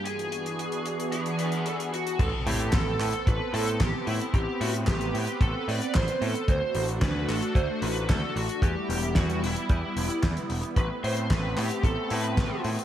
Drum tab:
CC |----------------|x---------------|----------------|----------------|
HH |xxxxxxxxxxxxxxxx|x-oxx-oxx-oxx-ox|x-oxxxoxx-oxxxox|x-oxx-oxx-oxx-ox|
CP |----------------|----x-x-----x---|----x-------x---|----x-x-----x---|
SD |----------------|----o-------o---|----o-------o---|----o-------o---|
BD |----------------|o---o---o---o---|o---o---o---o---|o---o---o---o---|

CC |----------------|----------------|
HH |x-oxxxoxx-oxxxox|x-oxx-oxx-oxx-ox|
CP |----x-------x---|----x-x-----x---|
SD |----o-------o---|----o-------o---|
BD |o---o---o---o---|o---o---o---o---|